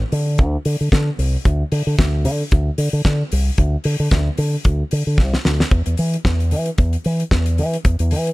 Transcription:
0.12 fingered electric bass D3, open hi-hat
0.38 fingered electric bass D2, kick, closed hi-hat
0.65 fingered electric bass D3, open hi-hat
0.81 fingered electric bass D3
0.92 fingered electric bass D3, kick, snare, closed hi-hat
1.19 fingered electric bass C2, open hi-hat
1.45 fingered electric bass D2, kick, closed hi-hat
1.72 fingered electric bass D3, open hi-hat
1.87 fingered electric bass D3
1.99 fingered electric bass D2, kick, snare, closed hi-hat
2.25 fingered electric bass D3, open hi-hat
2.51 fingered electric bass D2, kick, closed hi-hat
2.78 fingered electric bass D3, open hi-hat
2.93 fingered electric bass D3
3.05 fingered electric bass D3, kick, snare, closed hi-hat
3.32 fingered electric bass C2, open hi-hat
3.58 fingered electric bass D2, kick, closed hi-hat
3.84 fingered electric bass D3, open hi-hat
4.00 fingered electric bass D3
4.11 fingered electric bass D2, kick, snare, closed hi-hat
4.37 fingered electric bass D3, open hi-hat
4.64 fingered electric bass D2, kick, closed hi-hat
4.91 fingered electric bass D3, open hi-hat
5.07 fingered electric bass D3
5.18 fingered electric bass C2, kick, snare
5.34 snare
5.45 fingered electric bass D2, snare
5.60 snare
5.71 fingered electric bass E2, kick, closed hi-hat
5.86 fingered electric bass E2, closed hi-hat
5.97 fingered electric bass E3, open hi-hat
6.14 closed hi-hat
6.25 fingered electric bass E2, kick, snare
6.40 closed hi-hat
6.51 fingered electric bass E3, open hi-hat
6.66 closed hi-hat
6.78 fingered electric bass E2, kick, closed hi-hat
6.93 closed hi-hat
7.04 fingered electric bass E3, open hi-hat
7.20 closed hi-hat
7.31 fingered electric bass E2, kick, snare
7.46 closed hi-hat
7.58 fingered electric bass E3, open hi-hat
7.73 closed hi-hat
7.85 fingered electric bass E2, kick, closed hi-hat
7.99 fingered electric bass E2, closed hi-hat
8.11 fingered electric bass E3, open hi-hat
8.27 closed hi-hat

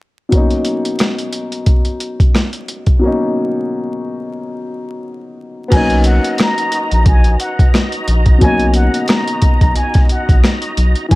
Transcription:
0.29 grand piano B2 F#3, kick, closed hi-hat
0.33 grand piano A#3 C#4
0.37 grand piano D#4
0.50 closed hi-hat
0.65 closed hi-hat
0.85 closed hi-hat
0.99 cross-stick, snare, closed hi-hat
1.18 closed hi-hat
1.33 closed hi-hat
1.52 closed hi-hat
1.66 kick, closed hi-hat
1.85 closed hi-hat
2.00 closed hi-hat
2.20 kick, closed hi-hat
2.35 cross-stick, snare, closed hi-hat
2.53 closed hi-hat
2.68 closed hi-hat
2.86 kick, closed hi-hat
2.99 grand piano B2 F#3
3.03 grand piano A#3 C#4
3.07 grand piano D#4
5.68 analog synth bass B1, grand piano F#3 B3, tonewheel organ D#4 F#4 D#5 A#5, muted trumpet G#5, kick, closed hi-hat, crash
5.72 grand piano A#3 C#4
5.76 grand piano D#4
5.90 closed hi-hat
6.04 muted trumpet F#5, closed hi-hat
6.24 closed hi-hat
6.38 muted trumpet A#5, cross-stick, snare, closed hi-hat
6.58 closed hi-hat
6.72 closed hi-hat
6.91 analog synth bass A#1, muted trumpet A#5, closed hi-hat
7.06 analog synth bass A#1, muted trumpet G#5, kick, closed hi-hat
7.24 closed hi-hat
7.40 muted trumpet F#5, closed hi-hat
7.59 kick, closed hi-hat
7.74 cross-stick, snare, closed hi-hat
7.92 closed hi-hat
8.08 analog synth bass A#1, closed hi-hat
8.26 kick, closed hi-hat
8.38 analog synth bass B1, grand piano B2 F#3, muted trumpet G#5, kick, closed hi-hat
8.43 grand piano A#3 C#4 D#4
8.60 closed hi-hat
8.74 muted trumpet F#5, closed hi-hat
8.94 closed hi-hat
9.08 muted trumpet A#5, cross-stick, snare, closed hi-hat
9.28 closed hi-hat
9.42 kick, closed hi-hat
9.61 analog synth bass B1, muted trumpet A#5, kick, closed hi-hat
9.76 muted trumpet G#5, closed hi-hat
9.94 kick, snare, closed hi-hat
10.09 muted trumpet F#5, closed hi-hat
10.29 analog synth bass A#1, kick, closed hi-hat
10.44 cross-stick, snare, closed hi-hat
10.62 closed hi-hat
10.77 analog synth bass B1, closed hi-hat
10.95 closed hi-hat
11.09 analog synth bass B1, grand piano E3 G#3, tonewheel organ C#4 G#4 C#5 B5, muted trumpet G#5, kick, closed hi-hat

